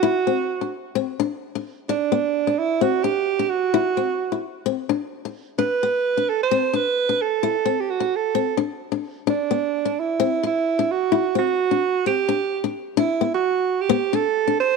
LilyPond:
<<
  \new Staff \with { instrumentName = "Alto saxophone" } { \time 4/4 \key c \lydian \tempo 4 = 130 fis'4. r2 r8 | d'4. e'8 fis'8 g'4 fis'8~ | fis'4. r2 r8 | b'4. a'16 c''8. b'4 a'8~ |
a'8. g'16 fis'8 a'4 r4. | d'4. e'4 e'4 fis'8~ | fis'8 fis'4. g'4. r8 | e'8. fis'4 g'8. a'4 c''8 | }
  \new Staff \with { instrumentName = "Steel-string acoustic guitar" } { \time 4/4 \key c \lydian e'8 c'8 r16 d'8 r16 c'8 d'8 r16 d'8 r16 | d'8 b8 r16 d'8 r16 c'8 d'8 r16 d'8 r16 | e'8 c'8 r16 e'8 r16 c'8 d'8 r16 d'8 r16 | d'8 b8 r16 d'8 r16 c'8 d'8 r16 d'8 r16 |
e'8 c'8 r16 d'8 r16 c'8 d'8 r16 d'8 r16 | d'8 b8 r16 d'8 r16 c'8 d'8 r16 d'8 r16 | e'8 c'8 r16 d'8 r16 c'8 d'8 r16 d'8 r16 | d'8 b8 r4 b8 d'8 r16 d'8 r16 | }
>>